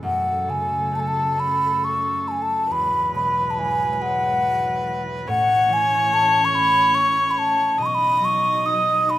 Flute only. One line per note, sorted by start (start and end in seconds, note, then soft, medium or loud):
0.04 0.51 F#5 medium
0.50 0.97 G#5 medium
0.95 1.01 A5 medium
1.00 1.09 G#5 medium
1.07 1.41 A5 medium
1.40 1.86 B5 medium
1.84 2.29 C#6 medium
2.28 2.44 G#5 medium
2.28 2.33 A5 medium
2.42 2.73 A5 medium
2.72 3.15 B5 medium
3.15 3.52 B5 medium
3.50 3.60 A5 medium
3.59 3.93 G#5 medium
3.93 4.03 G#5 medium
4.02 5.03 F#5 medium
5.29 5.75 F#5 loud
5.73 6.15 G#5 loud
6.13 6.46 A5 medium
6.45 6.56 C#6 medium
6.55 6.96 B5 loud
6.95 7.32 C#6 loud
7.31 7.40 B5 medium
7.38 7.84 A5 medium
7.82 7.87 B5 loud
7.82 7.96 C#6 medium
7.95 8.26 B5 loud
8.25 8.67 C#6 medium
8.66 9.11 D#6 medium
9.10 9.19 B5 medium